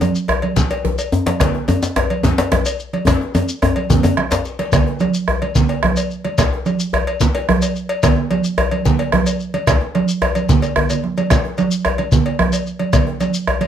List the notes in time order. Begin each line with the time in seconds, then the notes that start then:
0.01 cowbell, djembe tone, high conga, shekere
0.15 shekere
0.28 bombo rim, cowbell, djembe bass
0.42 cowbell, high conga
0.56 bombo rim, bombo low, djembe slap, low conga, shekere
0.71 cowbell, djembe tone
0.85 high conga, djembe bass
0.98 cowbell, shekere
1.12 djembe tone, shekere
1.26 cowbell, djembe slap, high conga
1.40 bombo rim, bombo low, cowbell, djembe slap, low conga, djembe bass, shekere
1.55 bombo rim, djembe tone
1.68 cowbell, djembe tone, high conga, shekere
1.83 djembe slap, shekere
1.96 bombo rim, cowbell, djembe slap, djembe bass
2.10 cowbell, high conga
2.23 bombo rim, bombo low, djembe slap, djembe tone, low conga, shekere
2.38 cowbell, djembe slap, djembe tone
2.52 bombo rim, djembe slap, high conga, djembe bass
2.65 cowbell, shekere
2.79 shekere
2.93 cowbell, high conga
3.07 bombo rim, bombo low, cowbell, djembe slap, high conga, djembe tone, low conga, djembe bass, shekere
3.20 bombo rim, djembe slap, djembe tone
3.35 bombo rim, cowbell, djembe slap, djembe tone, high conga, shekere
3.48 shekere
3.62 bombo rim, cowbell, djembe slap, djembe tone, djembe bass
3.76 cowbell, djembe slap, high conga
3.90 bombo rim, bombo low, djembe slap, djembe tone, low conga, shekere
4.03 cowbell, djembe tone, high conga, shekere
4.17 bombo rim, high conga, djembe bass
4.31 cowbell, djembe slap, djembe bass, shekere
4.45 djembe slap, shekere
4.59 cowbell, djembe slap, high conga
4.72 bombo rim, bombo low, cowbell, djembe slap, low conga, djembe bass, shekere
4.87 bombo rim, djembe tone
5.00 cowbell, high conga, shekere
5.14 shekere
5.28 bombo rim, djembe bass
5.42 cowbell, high conga
5.55 bombo rim, bombo low, djembe slap, low conga, shekere
5.69 cowbell, djembe tone
5.83 bombo rim, high conga, djembe bass
5.96 cowbell, shekere
6.11 shekere
6.25 cowbell, high conga
6.38 bombo rim, bombo low, cowbell, djembe slap, low conga, djembe bass, shekere
6.53 bombo rim, djembe tone
6.66 cowbell, high conga, shekere
6.80 shekere
6.93 bombo rim, cowbell, djembe bass
7.07 cowbell
7.20 bombo rim, bombo low, djembe slap, low conga, shekere
7.35 cowbell, djembe tone
7.49 bombo rim, high conga, djembe bass
7.62 cowbell, shekere
7.76 shekere
7.89 cowbell
8.03 bombo rim, bombo low, cowbell, djembe slap, low conga, djembe bass, shekere
8.17 bombo rim
8.31 cowbell, high conga
8.44 shekere
8.58 bombo rim, cowbell, djembe bass
8.71 cowbell, high conga
8.85 bombo rim, bombo low, djembe slap, low conga, shekere
8.99 cowbell, djembe tone
9.12 bombo rim, high conga, djembe bass
9.26 cowbell, shekere
9.40 shekere
9.54 cowbell, high conga
9.67 bombo rim, bombo low, cowbell, djembe slap, djembe bass, low conga, shekere
9.81 djembe tone
9.95 bombo rim, cowbell, high conga
10.08 shekere
10.22 bombo rim, cowbell, high conga, djembe bass
10.35 cowbell, high conga, shekere
10.49 bombo rim, bombo low, djembe slap, high conga, low conga, shekere
10.62 cowbell, djembe slap, djembe tone, shekere
10.76 bombo rim, djembe bass, low conga
10.90 cowbell, low conga, shekere
11.04 bombo rim, high conga
11.17 cowbell, djembe slap, high conga, shekere
11.30 bombo rim, bombo low, cowbell, djembe slap, djembe bass, low conga, shekere
11.44 bombo rim, djembe tone
11.58 cowbell, high conga, shekere
11.71 shekere
11.85 bombo rim, cowbell, djembe bass
11.98 cowbell, high conga
12.12 bombo rim, bombo low, djembe slap, low conga, shekere
12.26 cowbell, djembe tone
12.39 bombo rim, high conga, djembe bass
12.53 cowbell, shekere
12.67 shekere
12.79 cowbell, high conga
12.93 bombo rim, bombo low, cowbell, djembe slap, low conga, djembe bass, shekere
13.07 bombo rim, djembe tone
13.20 cowbell, high conga, shekere
13.34 shekere
13.47 bombo rim, cowbell, djembe bass
13.61 cowbell, high conga